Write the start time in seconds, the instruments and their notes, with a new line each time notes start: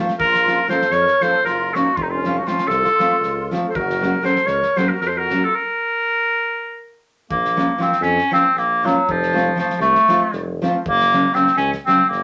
0.00 nylon-string guitar F4
0.08 snare
0.19 tuba A#1, accordion F4, clarinet A#4, kick
0.34 snare
0.46 nylon-string guitar F3 A#3 C#4 F4, snare
0.68 nylon-string guitar F3 A#3 C#4 F4, accordion A4, clarinet C5, snare
0.81 snare
0.90 tuba F2, accordion A#4, clarinet C#5, snare
1.07 snare
1.20 nylon-string guitar F3 A#3 C#4 F4, accordion A4, clarinet C5, snare
1.43 tuba F#1, accordion F4, clarinet A#4, snare
1.74 nylon-string guitar F3 A#3 C#4 F4, accordion D#4, clarinet F#4, snare
1.96 tuba F1, accordion C4, clarinet F4, kick
2.02 accordion C4, clarinet D#4
2.10 accordion C#4, clarinet F4
2.24 nylon-string guitar F3 A3 C4 F4, snare
2.39 accordion D#4, clarinet F#4
2.46 nylon-string guitar F3 A3 C4 F4, accordion C#4, clarinet F4, snare
2.58 snare
2.65 tuba C2, accordion F4, clarinet A4
2.70 snare
2.84 snare
2.99 nylon-string guitar F3 A3 C4 F4, snare
3.21 tuba C#2, snare
3.51 nylon-string guitar F3 A3 C4 F4, snare
3.69 accordion A4, clarinet C5
3.73 tuba F#1, accordion F#4, clarinet A#4, kick
3.90 snare
4.00 nylon-string guitar F#3 A#3 C#4 F#4, snare
4.21 nylon-string guitar F#3 A#3 C#4 F#4, accordion A4, clarinet C5, snare
4.36 snare
4.45 tuba C#2, accordion A#4, clarinet C#5, snare
4.62 snare
4.76 nylon-string guitar F#3 A#3 C#4 F#4, accordion A4, clarinet C5, snare
4.88 accordion F#4, clarinet A#4
5.00 tuba F2, accordion F#4, clarinet A#4, snare
5.07 accordion A4, clarinet C5
5.17 accordion F#4, clarinet A#4
5.30 nylon-string guitar F#3 A#3 C#4 F#4, snare
5.43 accordion F4, clarinet A4
5.54 clarinet A#4
7.31 tuba A#1, clarinet A#3, kick
7.45 snare
7.56 nylon-string guitar F3 A#3 C#4 F4, snare
7.78 nylon-string guitar F3 A#3 C#4 F4, clarinet C4, snare
7.92 snare
8.01 tuba F2, clarinet C#4, snare
8.18 snare
8.31 nylon-string guitar F3 A#3 C#4 F4, clarinet C4, snare
8.54 tuba A#1, clarinet A#3, snare
8.83 nylon-string guitar F3 A#3 C#4 F4, clarinet F#3, snare
9.08 tuba F1, clarinet F3, kick
9.23 snare
9.33 nylon-string guitar F3 A3 C4 F4
9.37 snare
9.56 nylon-string guitar F3 A3 C4 F4, snare
9.60 clarinet F3
9.70 snare
9.79 tuba C2, clarinet A3, snare
9.95 snare
10.08 nylon-string guitar F3 A3 C4 F4, snare
10.32 tuba F1, snare
10.62 nylon-string guitar F3 A3 C4 F4, snare
10.85 tuba F#1, clarinet A#3, kick
11.00 snare
11.12 nylon-string guitar C#3 F#3 A#3 C#4, snare
11.34 nylon-string guitar C#3 F#3 A#3 C#4, clarinet C4, snare
11.47 snare
11.57 tuba C#2, clarinet C#4, snare
11.72 snare
11.86 nylon-string guitar C#3 F#3 A#3 C#4, clarinet C4, snare
12.09 tuba F#1, clarinet A#3, snare